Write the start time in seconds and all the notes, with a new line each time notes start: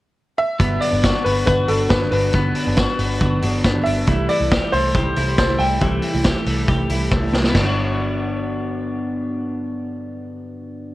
0.38 E5
0.59 G1 G2 D3 F#3 B3 D4, kick, closed hi-hat
0.80 D4 D5, open hi-hat
0.91 G1 G2 D3 F#3 B3 D4
1.03 F#4, kick, snare, closed hi-hat
1.13 F#3 B3 D4
1.24 G1 B3 B4, open hi-hat
1.46 G1 D3 F#3 B3 D4 F#4 B4, kick, closed hi-hat
1.68 G1 D3 F#3 B3 D4 A4, open hi-hat
1.89 G1 B3 B4, kick, snare, closed hi-hat
2.01 G2 D3 F#3 B3 D4
2.11 G1 D4 B4, open hi-hat
2.33 G1 G2 D3 F#3 B3 D4, kick, closed hi-hat
2.55 D4, open hi-hat
2.65 G1 G2 D3 F#3 B3 D4
2.77 F#4, kick, snare, closed hi-hat
2.87 F#3 B3 D4
2.99 G1 B3, open hi-hat
3.20 G1 D3 F#3 B3 D4 F#4, kick, closed hi-hat
3.42 G1 D3 F#3 B3 D4, open hi-hat
3.65 G1 B3, kick, snare, closed hi-hat
3.74 G2 D3 F#3 B3 D4
3.84 G1 D4 E5, open hi-hat
4.07 C2 C3 E3 G3 A3 E4, kick, closed hi-hat
4.29 E4 D5, open hi-hat
4.39 C2 C3 G3 A3 E4
4.52 G4, kick, snare, closed hi-hat
4.61 G3 A3 E4
4.73 C2 A3 C5, open hi-hat
4.94 C2 C3 G3 A3 E4 G4, kick, closed hi-hat
5.16 C2 C3 G3 A3 E4, open hi-hat
5.38 C2 A3 C5, kick, snare, closed hi-hat
5.48 C3 G3 A3 E4
5.59 C2 E4 G5, open hi-hat
5.80 C2 C3 E3 G3 A3 E4, kick, closed hi-hat
6.02 E4, open hi-hat
6.13 C2 C3 G3 A3 E4
6.24 G4, kick, snare, closed hi-hat
6.34 G3 A3 E4
6.46 C2 A3, open hi-hat
6.66 C2 C3 G3 A3 E4 G4, kick, closed hi-hat
6.89 C2 C3 G3 A3 E4, open hi-hat
7.11 C2 A3, kick, snare
7.22 C3 G3 A3 E4
7.33 C2 D4, snare
7.44 E4, snare
7.49 G2 B3
7.55 G1 D3 F#3, kick, snare, crash
7.59 B3 D4
7.64 D4 F#4